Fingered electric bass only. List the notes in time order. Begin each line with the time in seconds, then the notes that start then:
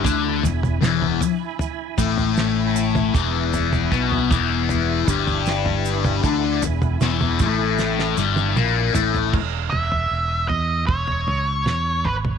0.05 D2
0.44 E1
0.82 E1
1.98 A1
3.14 E1
3.92 B1
4.31 E1
5.08 G1
6.24 D2
6.62 E1
7.01 E1
7.40 A1
8.18 G1
8.56 A#1
8.95 A1
9.33 E1
9.73 E1
10.11 E1
10.49 E2
10.88 E1
11.27 C#2
11.66 E2
12.04 G#1